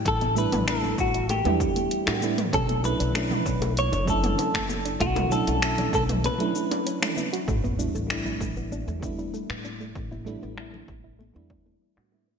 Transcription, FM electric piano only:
X:1
M:4/4
L:1/16
Q:1/4=97
K:Amix
V:1 name="FM electric piano"
[G,A,B,DE]2 [G,A,B,DE]2 [G,A,B,DE]4- [G,A,B,DE] [G,A,B,DE]4 [G,A,B,DF] [G,A,B,DE] z | z2 [F,A,CDE]2 [F,A,CDE]6 [F,A,CDE]6- | [F,A,CDE]2 [F,A,CDE]2 [F,A,CDE]4- [F,A,CDE] [F,A,CDE] [F,A,CDE]3 [F,A,CDE]3 | z2 [G,A,B,DE]2 [G,A,B,DE]6 [G,A,B,DE]6- |
[G,A,B,DE]2 [G,A,B,DE]2 [G,A,B,DE]4- [G,A,B,DE] [G,A,B,DE]4 [G,A,B,DF] [G,A,B,DE] z |]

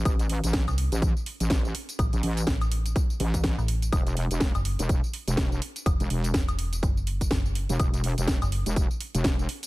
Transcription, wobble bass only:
X:1
M:4/4
L:1/16
Q:"Swing 16ths" 1/4=124
K:Em
V:1 name="Wobble bass" clef=bass
A,,,3 A,,,2 z2 A,,,2 z2 A,,,3 z2 | z A,,, A,,,2 z6 A,,,3 z3 | E,,,3 E,,,2 z2 E,,,2 z2 E,,,3 z2 | z E,,, E,,,2 z8 z3 E,,, |
E,,,3 E,,,2 z2 E,,,2 z2 E,,,3 z2 |]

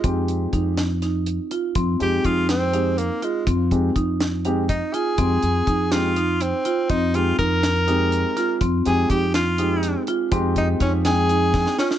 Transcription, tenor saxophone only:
X:1
M:7/8
L:1/8
Q:1/4=123
K:Fm
V:1 name="Tenor saxophone"
z6 z | z G F C2 B, A, | z4 z E A- | A3 F2 C2 |
E F B4- B | z A G F3 z | z E D A3 D |]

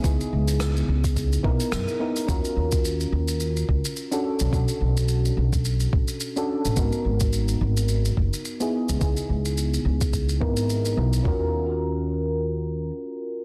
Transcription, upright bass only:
X:1
M:4/4
L:1/16
Q:"Swing 16ths" 1/4=107
K:Ebphr
V:1 name="Upright bass" clef=bass
D,, z D,,3 z D,,3 z C,, z G,, z3 | E,, z E,,3 z E,,3 z D,, z4 =B,,, | =B,,, z B,,,3 z B,,,3 z =A,,, z4 A,,, | A,,, z A,,,3 z A,,,3 z G,,, z4 D,, |
D,, z D,,3 z D,,4 A,,,3 z C,, z | z16 |]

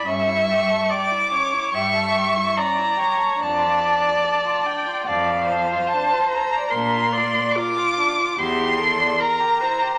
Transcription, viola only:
X:1
M:4/4
L:1/8
Q:1/4=72
K:Dm
V:1 name="Viola"
e2 d ^c e2 d c | d4 d c3 | B d F2 G A B c |]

